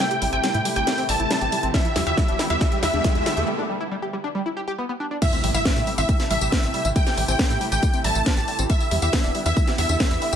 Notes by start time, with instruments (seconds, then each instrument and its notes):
Already playing: riser
0.00 synth arpeggio sound G3, synth pluck G5, supersaw synth G5, snare, closed hi-hat
0.11 synth arpeggio sound G4, closed hi-hat
0.22 analog synth bass A1, synth arpeggio sound G3, open hi-hat
0.33 analog synth bass A1, synth arpeggio sound C4, supersaw synth G5, synth pluck G5, closed hi-hat
0.44 synth arpeggio sound G3, snare, closed hi-hat
0.54 analog synth bass A2, synth arpeggio sound E4, closed hi-hat
0.65 synth arpeggio sound G3, open hi-hat
0.76 analog synth bass A1, synth arpeggio sound G4, synth pluck G5, supersaw synth G5, closed hi-hat
0.87 synth arpeggio sound G3, snare, closed hi-hat
0.98 synth arpeggio sound C4, open hi-hat
1.09 analog synth bass A1, synth arpeggio sound G3, supersaw synth A5, synth pluck A5, open hi-hat
1.20 analog synth bass A1, synth arpeggio sound E4, closed hi-hat
1.31 synth arpeggio sound G3, snare, closed hi-hat
1.41 analog synth bass A1, synth arpeggio sound G4, closed hi-hat
1.52 synth arpeggio sound G3, open hi-hat
1.63 analog synth bass A1, synth arpeggio sound C4, closed hi-hat
1.74 synth arpeggio sound G3, synth pluck E5, supersaw synth E5, kick, snare, closed hi-hat
1.85 synth arpeggio sound E4, closed hi-hat
1.96 analog synth bass E2, synth arpeggio sound G3, snare, open hi-hat
2.07 analog synth bass E2, synth arpeggio sound G4, synth pluck E5, supersaw synth E5, closed hi-hat
2.18 synth arpeggio sound G3, kick, snare, closed hi-hat
2.28 analog synth bass E1, synth arpeggio sound D4, closed hi-hat
2.39 synth arpeggio sound G3, snare, open hi-hat
2.50 analog synth bass E2, synth arpeggio sound E4, synth pluck E5, supersaw synth E5, closed hi-hat
2.61 synth arpeggio sound G3, kick, snare, closed hi-hat
2.72 synth arpeggio sound G4, closed hi-hat
2.83 analog synth bass E2, synth arpeggio sound G3, synth pluck E5, supersaw synth E5, snare, open hi-hat
2.94 analog synth bass E2, synth arpeggio sound D4, closed hi-hat
3.04 synth arpeggio sound G3, kick, snare, closed hi-hat
3.15 analog synth bass E2, synth arpeggio sound E4, closed hi-hat
3.26 synth arpeggio sound G3, snare, open hi-hat
3.37 analog synth bass E2, synth arpeggio sound G4, closed hi-hat
3.48 synth arpeggio sound G3
3.59 synth arpeggio sound D4
3.70 synth arpeggio sound G3
3.81 synth arpeggio sound E4
3.91 synth arpeggio sound G3
4.02 synth arpeggio sound G4
4.13 synth arpeggio sound G3
4.24 synth arpeggio sound D4
4.35 synth arpeggio sound G3
4.46 synth arpeggio sound E4
4.57 synth arpeggio sound G4
4.68 synth arpeggio sound G4
4.78 synth arpeggio sound B3
4.89 synth arpeggio sound B3
5.00 synth arpeggio sound D4
5.11 synth arpeggio sound D4
5.22 synth arpeggio sound G3, supersaw synth E5, synth pluck E5, kick, closed hi-hat, tambourine, crash, impact
5.33 synth arpeggio sound C4, closed hi-hat, tambourine
5.44 analog synth bass A1, synth arpeggio sound G3, open hi-hat
5.54 analog synth bass A1, synth arpeggio sound E4, synth pluck E5, supersaw synth E5, closed hi-hat, tambourine
5.65 synth arpeggio sound G3, kick, snare, closed hi-hat, tambourine
5.76 analog synth bass A2, synth arpeggio sound G4, closed hi-hat, tambourine
5.87 synth arpeggio sound G3, open hi-hat
5.98 analog synth bass A1, synth arpeggio sound C4, synth pluck E5, supersaw synth E5, closed hi-hat, tambourine
6.09 synth arpeggio sound G3, kick, closed hi-hat, tambourine
6.20 synth arpeggio sound E4, snare, closed hi-hat, tambourine
6.30 analog synth bass A1, synth arpeggio sound G3, synth pluck E5, supersaw synth E5, open hi-hat
6.41 analog synth bass A1, synth arpeggio sound G4, closed hi-hat, tambourine
6.52 synth arpeggio sound G3, kick, snare, closed hi-hat, tambourine
6.63 analog synth bass A1, synth arpeggio sound C4, closed hi-hat, tambourine
6.74 synth arpeggio sound G3, open hi-hat
6.85 analog synth bass A1, synth arpeggio sound E4, closed hi-hat, tambourine
6.96 synth arpeggio sound G3, synth pluck G5, supersaw synth G5, kick, closed hi-hat, tambourine
7.07 synth arpeggio sound G4, snare, closed hi-hat, tambourine
7.17 analog synth bass A1, synth arpeggio sound G3, open hi-hat
7.28 analog synth bass A1, synth arpeggio sound C4, synth pluck G5, supersaw synth G5, closed hi-hat, tambourine
7.39 synth arpeggio sound G3, kick, snare, closed hi-hat, tambourine
7.50 analog synth bass A2, synth arpeggio sound E4, closed hi-hat, tambourine
7.61 synth arpeggio sound G3, open hi-hat
7.72 analog synth bass A1, synth arpeggio sound G4, synth pluck G5, supersaw synth G5, closed hi-hat, tambourine
7.83 synth arpeggio sound G3, kick, closed hi-hat, tambourine
7.94 synth arpeggio sound C4, closed hi-hat, tambourine
8.04 analog synth bass A1, synth arpeggio sound G3, synth pluck A5, supersaw synth A5, open hi-hat
8.15 analog synth bass A1, synth arpeggio sound E4, closed hi-hat, tambourine
8.26 synth arpeggio sound G3, kick, snare, closed hi-hat, tambourine
8.37 analog synth bass A1, synth arpeggio sound G4, closed hi-hat, tambourine
8.48 synth arpeggio sound G3, open hi-hat
8.59 analog synth bass A1, synth arpeggio sound C4, closed hi-hat, tambourine
8.70 synth arpeggio sound G3, synth pluck E5, supersaw synth E5, kick, closed hi-hat, tambourine
8.80 synth arpeggio sound E4, closed hi-hat, tambourine
8.91 analog synth bass E2, synth arpeggio sound G3, open hi-hat
9.02 analog synth bass E2, synth arpeggio sound G4, synth pluck E5, supersaw synth E5, closed hi-hat, tambourine
9.13 synth arpeggio sound G3, kick, snare, closed hi-hat, tambourine
9.24 analog synth bass E1, synth arpeggio sound D4, closed hi-hat, tambourine
9.35 synth arpeggio sound G3, open hi-hat
9.46 analog synth bass E2, synth arpeggio sound E4, synth pluck E5, supersaw synth E5, closed hi-hat, tambourine
9.57 synth arpeggio sound G3, kick, closed hi-hat, tambourine
9.67 synth arpeggio sound G4, snare, closed hi-hat, tambourine
9.78 analog synth bass E2, synth arpeggio sound G3, synth pluck E5, supersaw synth E5, open hi-hat
9.89 analog synth bass E2, synth arpeggio sound D4, closed hi-hat, tambourine
10.00 synth arpeggio sound G3, kick, snare, closed hi-hat, tambourine
10.11 analog synth bass E2, synth arpeggio sound E4, closed hi-hat, tambourine
10.22 synth arpeggio sound G3, open hi-hat
10.33 closed hi-hat, tambourine